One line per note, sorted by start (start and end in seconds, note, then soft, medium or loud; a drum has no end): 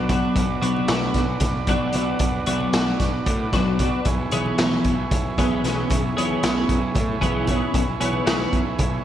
0.00 0.21 B1 medium
0.00 4.05 B1 medium
0.00 4.01 D4 medium
0.00 4.01 F#4 medium
0.00 9.04 B4 medium
0.00 4.01 D5 medium
0.09 0.43 F#3 medium
0.09 0.43 B3 medium
0.09 0.44 D4 medium
0.09 0.44 F#4 medium
0.09 kick medium
0.09 closed hi-hat medium
0.09 low conga loud
0.35 0.54 B1 medium
0.35 kick loud
0.35 closed hi-hat medium
0.35 high conga loud
0.62 0.81 B1 medium
0.62 0.87 F#3 medium
0.62 0.88 B3 medium
0.62 0.88 D4 medium
0.62 0.88 F#4 medium
0.62 closed hi-hat medium
0.76 low conga medium
0.88 1.08 B1 medium
0.88 1.23 F#3 medium
0.88 1.23 B3 medium
0.88 1.23 D4 medium
0.88 1.23 F#4 medium
0.88 snare loud
0.88 closed hi-hat loud
1.02 high conga medium
1.02 low conga soft
1.14 1.34 B1 medium
1.14 kick medium
1.14 snare soft
1.14 closed hi-hat medium
1.29 low conga soft
1.40 1.60 B1 medium
1.40 kick loud
1.40 snare soft
1.40 closed hi-hat medium
1.40 low conga loud
1.67 1.86 B1 medium
1.67 1.94 F#3 medium
1.67 1.94 B3 medium
1.67 1.94 D4 medium
1.67 1.95 F#4 medium
1.67 kick medium
1.67 closed hi-hat medium
1.67 high conga medium
1.93 2.13 B1 medium
1.93 2.29 F#3 medium
1.93 2.29 B3 medium
1.93 2.29 D4 medium
1.93 2.29 F#4 medium
1.93 closed hi-hat medium
1.93 low conga medium
2.19 2.39 B1 medium
2.19 kick loud
2.19 closed hi-hat medium
2.19 high conga medium
2.19 low conga soft
2.46 2.66 B1 medium
2.46 2.73 F#3 medium
2.46 2.73 B3 medium
2.46 2.73 D4 medium
2.46 2.73 F#4 loud
2.46 closed hi-hat medium
2.46 low conga soft
2.60 low conga medium
2.73 2.92 B1 medium
2.73 3.08 F#3 medium
2.73 3.08 B3 medium
2.73 3.08 D4 medium
2.73 3.08 F#4 medium
2.73 snare loud
2.73 closed hi-hat medium
2.87 high conga medium
3.00 3.19 B1 medium
3.00 kick medium
3.00 snare soft
3.00 closed hi-hat medium
3.00 low conga soft
3.26 3.45 A2 medium
3.26 kick medium
3.26 closed hi-hat medium
3.26 low conga medium
3.52 3.90 B1 medium
3.52 3.79 F#3 medium
3.52 3.79 B3 medium
3.52 3.80 D4 medium
3.52 3.79 F#4 medium
3.52 kick medium
3.52 snare soft
3.52 closed hi-hat medium
3.52 high conga medium
3.68 low conga soft
3.79 4.06 F#3 medium
3.79 4.06 B3 medium
3.79 4.06 D4 medium
3.79 4.06 F#4 medium
3.79 kick medium
3.79 closed hi-hat medium
3.79 low conga medium
4.05 4.25 B1 medium
4.05 9.04 B1 medium
4.05 9.04 E4 medium
4.05 9.04 G#4 medium
4.05 9.04 C#5 medium
4.05 kick loud
4.05 closed hi-hat medium
4.05 high conga medium
4.31 4.51 B1 medium
4.31 4.58 E3 medium
4.31 4.58 B3 medium
4.31 4.59 C#4 medium
4.31 4.59 G#4 medium
4.31 closed hi-hat medium
4.46 low conga medium
4.58 4.77 B1 medium
4.58 4.93 E3 medium
4.58 4.93 B3 medium
4.58 4.93 C#4 medium
4.58 4.94 G#4 medium
4.58 snare loud
4.58 closed hi-hat medium
4.71 high conga medium
4.71 low conga soft
4.84 5.03 B1 medium
4.84 kick medium
4.84 closed hi-hat medium
4.98 low conga soft
5.11 5.30 B1 medium
5.11 kick medium
5.11 closed hi-hat medium
5.11 low conga medium
5.37 5.57 B1 medium
5.37 5.63 E3 medium
5.37 5.64 B3 medium
5.37 5.64 C#4 medium
5.37 5.64 G#4 medium
5.37 kick medium
5.37 closed hi-hat medium
5.37 high conga medium
5.64 5.83 B1 medium
5.64 5.98 E3 medium
5.64 5.99 B3 medium
5.64 5.99 C#4 medium
5.64 5.99 G#4 medium
5.64 snare soft
5.64 closed hi-hat medium
5.90 6.09 B1 medium
5.90 kick loud
5.90 closed hi-hat medium
5.90 high conga medium
6.17 6.36 B1 medium
6.17 6.41 E3 medium
6.17 6.42 B3 medium
6.17 6.43 C#4 medium
6.17 6.43 G#4 medium
6.17 closed hi-hat medium
6.29 low conga medium
6.42 6.62 B1 medium
6.42 6.77 E3 medium
6.42 6.77 B3 medium
6.42 6.78 C#4 medium
6.42 6.78 G#4 medium
6.42 snare loud
6.42 closed hi-hat loud
6.55 low conga soft
6.69 6.88 B1 medium
6.69 kick medium
6.69 closed hi-hat medium
6.95 7.14 A2 medium
6.95 kick loud
6.95 closed hi-hat medium
6.95 low conga medium
7.21 7.59 B1 medium
7.21 7.46 E3 medium
7.21 7.47 B3 medium
7.21 7.48 C#4 medium
7.21 7.48 G#4 medium
7.21 kick medium
7.21 closed hi-hat medium
7.21 high conga medium
7.47 7.82 E3 medium
7.47 7.82 B3 medium
7.47 7.83 C#4 medium
7.47 7.83 G#4 medium
7.47 kick medium
7.47 closed hi-hat medium
7.47 low conga medium
7.74 7.93 B1 medium
7.74 kick loud
7.74 closed hi-hat medium
7.74 high conga medium
8.01 8.20 B1 medium
8.01 8.25 E3 medium
8.01 8.25 B3 medium
8.01 8.26 C#4 medium
8.01 8.26 G#4 medium
8.01 closed hi-hat medium
8.13 low conga medium
8.26 8.45 B1 loud
8.26 8.61 E3 medium
8.26 8.61 B3 medium
8.26 8.61 C#4 medium
8.26 8.61 G#4 medium
8.26 snare loud
8.26 closed hi-hat medium
8.39 high conga medium
8.39 low conga soft
8.53 8.72 B1 medium
8.53 kick medium
8.53 closed hi-hat medium
8.66 low conga soft
8.79 8.98 B1 medium
8.79 kick loud
8.79 closed hi-hat medium
8.79 low conga loud